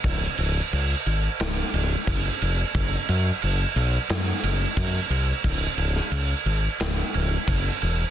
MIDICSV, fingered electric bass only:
0, 0, Header, 1, 2, 480
1, 0, Start_track
1, 0, Tempo, 676437
1, 32, Time_signature, 4, 2, 24, 8
1, 5749, End_track
2, 0, Start_track
2, 0, Title_t, "Fingered electric bass"
2, 0, Program_c, 0, 33
2, 31, Note_on_c, 0, 25, 89
2, 180, Note_off_c, 0, 25, 0
2, 271, Note_on_c, 0, 25, 82
2, 420, Note_off_c, 0, 25, 0
2, 517, Note_on_c, 0, 37, 78
2, 664, Note_off_c, 0, 37, 0
2, 754, Note_on_c, 0, 32, 83
2, 902, Note_off_c, 0, 32, 0
2, 993, Note_on_c, 0, 25, 91
2, 1142, Note_off_c, 0, 25, 0
2, 1229, Note_on_c, 0, 25, 81
2, 1379, Note_off_c, 0, 25, 0
2, 1471, Note_on_c, 0, 30, 85
2, 1620, Note_off_c, 0, 30, 0
2, 1714, Note_on_c, 0, 29, 87
2, 1863, Note_off_c, 0, 29, 0
2, 1950, Note_on_c, 0, 30, 85
2, 2099, Note_off_c, 0, 30, 0
2, 2192, Note_on_c, 0, 42, 77
2, 2341, Note_off_c, 0, 42, 0
2, 2436, Note_on_c, 0, 30, 83
2, 2583, Note_off_c, 0, 30, 0
2, 2667, Note_on_c, 0, 35, 84
2, 2817, Note_off_c, 0, 35, 0
2, 2909, Note_on_c, 0, 42, 90
2, 3059, Note_off_c, 0, 42, 0
2, 3146, Note_on_c, 0, 30, 80
2, 3297, Note_off_c, 0, 30, 0
2, 3385, Note_on_c, 0, 42, 87
2, 3536, Note_off_c, 0, 42, 0
2, 3619, Note_on_c, 0, 36, 85
2, 3772, Note_off_c, 0, 36, 0
2, 3863, Note_on_c, 0, 25, 84
2, 4014, Note_off_c, 0, 25, 0
2, 4096, Note_on_c, 0, 25, 79
2, 4250, Note_off_c, 0, 25, 0
2, 4338, Note_on_c, 0, 37, 82
2, 4491, Note_off_c, 0, 37, 0
2, 4581, Note_on_c, 0, 32, 88
2, 4732, Note_off_c, 0, 32, 0
2, 4825, Note_on_c, 0, 25, 87
2, 4975, Note_off_c, 0, 25, 0
2, 5072, Note_on_c, 0, 25, 82
2, 5220, Note_off_c, 0, 25, 0
2, 5306, Note_on_c, 0, 30, 82
2, 5455, Note_off_c, 0, 30, 0
2, 5552, Note_on_c, 0, 28, 87
2, 5700, Note_off_c, 0, 28, 0
2, 5749, End_track
0, 0, End_of_file